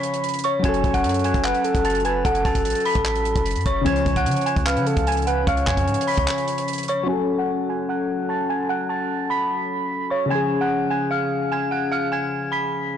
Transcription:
Already playing: C#3 F3 C#4 C#5 B5 B6
0.03 closed hi-hat
0.14 closed hi-hat
0.24 closed hi-hat
0.29 closed hi-hat
0.34 closed hi-hat
0.39 closed hi-hat
0.44 C#5 C#6, closed hi-hat
0.59 F#3 C#4
0.64 F#1 F#4 C#5 G#5 G#6, kick, closed hi-hat
0.69 A4
0.74 closed hi-hat
0.84 F#1, kick, closed hi-hat
0.94 F#5 F#6, kick, closed hi-hat
1.04 F#2, closed hi-hat
1.09 closed hi-hat
1.14 closed hi-hat
1.19 closed hi-hat
1.24 G#5 G#6, closed hi-hat
1.34 F#1, kick, closed hi-hat
1.44 B4 F#5 F#6, clap, closed hi-hat
1.55 closed hi-hat
1.64 A4, closed hi-hat
1.75 F#1, kick, closed hi-hat
1.85 A5 A6, closed hi-hat
1.90 closed hi-hat
1.95 closed hi-hat
2.00 closed hi-hat
2.05 B4 G#5 G#6, closed hi-hat
2.25 F#1 A4 F#5 F#6, kick, closed hi-hat
2.35 closed hi-hat
2.45 F#1 A5 A6, kick, closed hi-hat
2.55 kick, closed hi-hat
2.65 A1, closed hi-hat
2.70 closed hi-hat
2.75 closed hi-hat
2.80 closed hi-hat
2.85 B5 B6, open hi-hat
2.95 A1, kick, closed hi-hat
3.05 clap, closed hi-hat
3.15 closed hi-hat
3.25 closed hi-hat
3.36 F#1, kick, closed hi-hat
3.46 closed hi-hat
3.51 closed hi-hat
3.56 F#2, closed hi-hat
3.61 closed hi-hat
3.66 F#1 C#5 C#6, kick, closed hi-hat
3.82 C#3 C#4
3.86 C#2 F3 C#5 G#5 G#6, kick, closed hi-hat
3.96 closed hi-hat
4.06 C#2, kick, closed hi-hat
4.16 F#5 F#6, kick, closed hi-hat
4.26 C#3, closed hi-hat
4.31 closed hi-hat
4.36 closed hi-hat
4.41 closed hi-hat
4.46 G#5 G#6, closed hi-hat
4.56 C#2, kick, closed hi-hat
4.66 B4 F5 F6, clap, closed hi-hat
4.77 C#3, closed hi-hat
4.87 A4, closed hi-hat
4.97 C#2, kick, closed hi-hat
5.07 G#5 G#6, closed hi-hat
5.12 closed hi-hat
5.17 closed hi-hat
5.22 closed hi-hat
5.27 B4 F#5 F#6, closed hi-hat
5.47 C#2 C#5 F5 F6, kick, closed hi-hat
5.57 closed hi-hat
5.67 F2 G#5 G#6, kick, clap, closed hi-hat
5.77 kick, closed hi-hat
5.87 G#2, closed hi-hat
5.94 closed hi-hat
6.01 closed hi-hat
6.07 B5 B6, open hi-hat
6.18 C#2, kick, closed hi-hat
6.28 clap, closed hi-hat
6.38 closed hi-hat
6.48 closed hi-hat
6.58 closed hi-hat
6.68 closed hi-hat
6.73 closed hi-hat
6.78 closed hi-hat
6.83 closed hi-hat
6.88 C#5 C#6, closed hi-hat
7.03 F#3 C#4
7.09 F#4 A4 G#5
7.38 F#5 F#6
7.69 G#5 G#6
7.89 F#5 F#6
8.29 A5 A6
8.49 G#5 G#6
8.69 F#5 F#6
8.89 A5 A6
9.30 B5 B6
10.10 C#5 C#6
10.26 C#3 C#4
10.30 F3 G#5 G#6
10.35 G#4
10.61 F#5 F#6
10.90 G#5 G#6
11.11 F5 F6
11.52 G#5 G#6
11.71 F#5 F#6
11.92 F5 F6
12.12 G#5 G#6
12.52 B5 B6

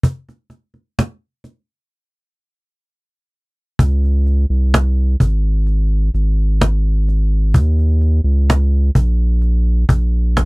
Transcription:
0.03 cajon bass
0.29 cajon slap
0.50 cajon slap
0.74 cajon slap
0.99 cajon slap
1.44 cajon slap
3.79 C#2, cajon bass
4.04 cajon slap
4.26 cajon slap
4.50 C2
4.74 cajon slap
5.20 G#1, cajon bass
5.67 cajon slap
6.14 G#1, cajon slap
6.61 cajon slap
7.08 cajon slap
7.54 D#2, cajon bass
7.79 cajon slap
8.01 cajon slap
8.24 C#2
8.50 cajon slap
8.95 A#1, cajon bass
9.42 cajon slap
9.89 A#1, cajon bass
10.37 cajon slap

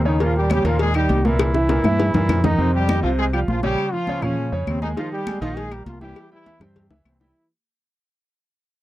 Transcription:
Already playing: D#2
0.05 C#3 D#3 C#4 D#4 C#5
0.20 A#2 F3 A#3 F4 A#4, cowbell, high conga
0.36 G3 G4, high conga
0.50 C#3 G3 C#4 G4 C#5, cowbell, high conga, claves
0.64 D#2 A#2 F3 A#3 F4 A#4, cowbell, high conga
0.79 G#3 G#4, cowbell, high conga
0.94 D#3 G3 D#4 G4 D#5, cowbell, high conga, claves
1.09 C2, cowbell, high conga
1.25 A#2 E3 A#3 E4 A#4, high conga
1.39 cowbell, high bongo, high conga, claves
1.54 E3 E4 E5, high bongo, high conga
1.69 A#2 A#3 A#4, cowbell, high bongo, high conga
1.84 G2 E3 E4 E5, low bongo, high conga, claves
2.00 cowbell, low bongo
2.14 G2 A#2 A#3 A#4, low bongo, low conga
2.29 F2 C3 C4, cowbell, low bongo, low conga, claves
2.44 D#3 D#4 D#5, low bongo, low conga
2.58 F2 C3 C4 C5, high conga
2.74 G3 G4, high conga
2.88 D#3 D#4 D#5, high conga, claves
3.03 C2 C3 F3 C4 F4 C5, high conga
3.18 G#3 G#4, high conga
3.33 F3 G3 F4 G4 F5, high conga, claves
3.47 A#1 F3 F4, high conga
3.62 C#3 G3 C#4 G4 C#5, high conga
3.78 high conga, claves
3.92 F3 F4 F5, high conga
4.07 C#3 C#4 C#5, high conga
4.22 A#2 C#3 F3 C#4 F4 F5, high conga, low conga, claves
4.37 high conga
4.52 F2 C#3 C#4 C#5, high conga
4.67 D#2 C3 C4, high conga, claves
4.82 D#3 G#3 D#4 G#4 G#5, high conga
4.96 D#3 F3 D#4 F4 D#5, cowbell, high conga
5.11 G3 G4, high conga
5.27 G#3 G#4 G#5, cowbell, high conga, claves
5.41 A#1 D#3 F3 D#4 F4 D#5, cowbell, high conga
5.56 G#3 G#4, cowbell, high conga
5.71 G3 A#3 G4 A#4 A#5, cowbell, high conga, claves
5.86 C2 F3 F4, cowbell, high conga
6.01 E3 G3 E4 G4 E5, high conga
6.16 cowbell, high conga, claves
6.31 E3 G3 E4 G4 G5, high conga
6.46 E3 E4 E5, cowbell, high conga
6.60 G2 C3 G3 C4 G4 G5, high bongo, high conga, low conga, claves
6.76 cowbell, high conga, low conga
6.90 C#2 E3 E4 E5, low bongo, high conga
7.05 C2 C3 C4, cowbell, high conga, claves
7.20 E3 G3 E4 G4 G5, low bongo

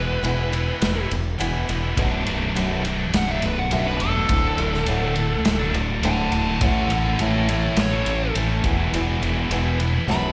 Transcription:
Already playing: E1 E2 B2 E3 G#3 B3 E4 B4
0.23 E1 E2 B2 E3 G#3 B3 E4, ride
0.38 E3 G#3 B3 E4
0.52 E2 B2 E3 G#3 B3 E4, ride
0.66 E3 G#3 B3 E4
0.82 E1 E2 B2, snare, ride
0.95 E3 G#3 B3 E4
1.10 E1 E2 B2, muted distorted electric guitar stroke, ride
1.38 E1 E2 B2 E3 G#3 B3 E4, ride
1.53 E3 G#3 B3 E4
1.68 E1 E2 B2 E3 G#3 B3 E4, ride
1.83 E3 G#3 B3 E4
1.97 B0 B1 F#2 B2 F#3 A3 D4, kick, ride
2.26 B0 F#2 B2 F#3 A3 D4, ride
2.40 F#3 A3 D4
2.44 B2
2.55 B0 B1 F#2 B2 F#3 A3 D4, ride
2.71 B2 F#3 A3 D4
2.84 F#2 B2 F#3 A3 D4, muted distorted electric guitar stroke, ride
2.99 B2 F#3 A3 D4
3.13 B0 F#2 B2 F#5, snare, ride
3.27 B2 F#3 A3 D4 E5
3.41 B0 F#2 B2 F#3 A3, muted distorted electric guitar stroke, ride
3.45 D4 B4
3.59 F#5
3.71 B0 B1 F#2 B2 F#3 A3 D4 E5, ride
3.86 B2 F#3 A3 D4 B4
4.00 E1 F#2 B2 F#3 A3 D4 A4, ride
4.14 B2 F#3 A3 D4
4.29 D1 D2 A2 D3 F#3 A3 D4, kick, ride
4.58 D1 D2 A2 D3 F#3 A3 D4, ride
4.71 D3 F#3 A3 D4, snare
4.86 D1 D2 A2 D3 F#3 A3 D4, ride
5.01 D3 F#3 A3 D4
5.15 D2 A2 D3 F#3 A3 D4, muted distorted electric guitar stroke, ride
5.29 D3 F#3 A3 D4
5.45 D1 D2 A2, snare, ride
5.59 D3 F#3 A3 D4
5.74 D1 D2 A2 D3 F#3 A3 D4, muted distorted electric guitar stroke, ride
6.03 D1 D2 A2 D3 F#3 A3 D4 F#5 A5, ride
6.18 D3 F#3 A3 D4
6.32 D1 D2 A2 D3 F#3 A3 D4 F#5 A5, ride
6.47 D3 F#3 A3 D4
6.61 A1 A2 E3 A3 C#4 E4 A4 F#5, kick, ride
6.90 A1 A2 E3 A3 C#4 E4 A4 F#5, ride
7.04 C#4 E4 A4
7.08 A3
7.19 A1 A2 E3 A3 C#4 E4 A4 C#5 E5, ride
7.34 A3 C#4 E4 A4
7.48 A2 E3 A3 C#4 E4 A4 C#5 E5, muted distorted electric guitar stroke, ride
7.63 A3 C#4 E4 A4
7.77 A1 A2 E3 C#5, snare, ride
7.92 A3 C#4 E4 A4
8.06 A1 A2 E3 A3 C#4 E4 A4, muted distorted electric guitar stroke, ride
8.35 A1 A2 E3 A3 C#4 E4 A4, ride
8.50 A3 C#4 E4 A4
8.63 E1 E2 B2 E3 G#3 B3 E4, kick, ride
8.78 E3 G#3 B3 E4
8.92 E1 E2 B2 E3 G#3 B3 E4, ride
9.21 E1 E2 B2 E3 G#3 B3 E4, ride
9.34 E3 G#3 B3 E4
9.50 E1 E2 B2 E3 G#3 B3 E4, ride
9.65 E3 G#3 B3 E4
9.79 E2 B2 E3 G#3 B3 E4, muted distorted electric guitar stroke, ride
9.93 E3 G#3 B3 E4
10.07 B0 B1 F#2 B2 F#3 D4 B5, snare
10.22 B2 F#3 D4

